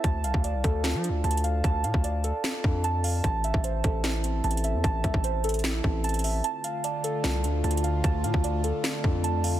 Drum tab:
HH |x-----------x-----------x-----------x-----------x-----------x-----------x---x---x---x-----------|x-----------x-----------x-----------x-----------x-----------------------x-----------o-----------|x-----------x-----------x-----------x-----------x-----------x-----------x---x---x---x-----------|x-----------x-----------x-----------x--x--x--x--------------------------x--x--x--x--o-----------|
SD |------------------------------------------------o-----------------------------------------------|------------------------------------------------o-----------------------------------------------|------------------------------------------------o-----------------------------------------------|------------------------------------------------o-----------------------------------------------|
BD |o-----------------o-----------------o-----------------------------------------------------------|o-----------------o-----------------------------------------o-----------------------------------|o-----------------o-----------------o-----------------------------------------------------------|o-----------o-----o-----------------------------------------o-----------------------------------|

HH |x-----------x-----------x-----------x-----------x-----------x-----------x---x---x---x-----------|x-----------x-----------x-----------x-----------x-----------------------x-----------o-----------|
SD |------------------------------------------------o-----------------------------------------------|------------------------------------------------o-----------------------------------------------|
BD |------------------------------------------------------------------------------------------------|o-----------------o-----------------------------------------o-----------------------------------|